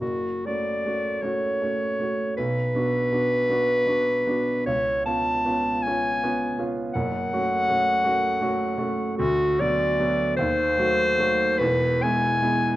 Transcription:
0.01 F#1 F#4
0.46 A3 C#4 F#4 D5
0.86 A3 C#4 F#4
1.22 A3 C#4 F#4 C#5
1.62 A3 C#4 F#4
1.99 A3 C#4 F#4
2.37 B1 B4
2.75 B3 D4 F#4
3.12 B3 D4 F#4
3.50 B3 D4 F#4
3.87 B3 D4 F#4
4.27 B3 D4 F#4
4.66 C#2 C#5
5.05 B3 C#4 F4 A5
5.45 B3 C#4 F4
5.83 C#4 G#5
5.87 B3 F4
6.23 B3 C#4 F4
6.59 B3 C#4 F4
6.94 F#1 F#2 F#5
7.33 A3 C#4 F#4
7.68 A3 C#4 F#4
8.04 A3 C#4 F#4
8.41 A3 C#4 F#4
8.78 A3 C#4 F#4
9.18 D2 F#4
9.60 F#3 B3 F#4 D5
9.99 F#3 B3 F#4
10.37 D#2 C5
10.77 F#3 A3 F#4
11.18 F#3 A3 F#4
11.58 E1 E2 B4
12.03 G#3 B3 E4 G#5
12.42 G#3 B3 E4

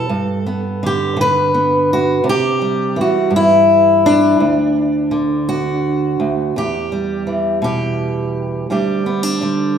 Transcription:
Already playing: G3 A4
0.09 G2
0.46 B3
0.83 D3 G4
1.17 D3
1.21 B4
1.54 B3
1.93 F#4
2.24 C3
2.29 G4
2.62 G3
2.96 E3
3.01 F#4
3.30 G2
3.36 E4
4.06 D4
4.40 D2
5.11 D3
5.49 F#4
6.20 D2
6.56 E2 G4
6.92 G3
7.27 E3
7.62 B2 G4
8.70 D2 G3 D4 G4
9.06 B3
9.23 D4
9.42 D3 G3

